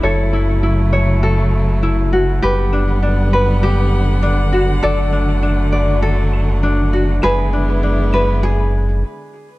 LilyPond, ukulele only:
\new Staff \with { instrumentName = "Ukulele" } { \time 4/4 \key fis \minor \tempo 4 = 100 <a' cis''>8 e'8 e'8 cis''8 a'4 e'8 fis'8 | <g' b'>8 d'8 d'8 b'8 g'4 d'8 fis'8 | <a' d''>8 d'8 d'8 d''8 a'4 d'8 fis'8 | <gis' b'>8 d'8 d'8 b'8 gis'4 r4 | }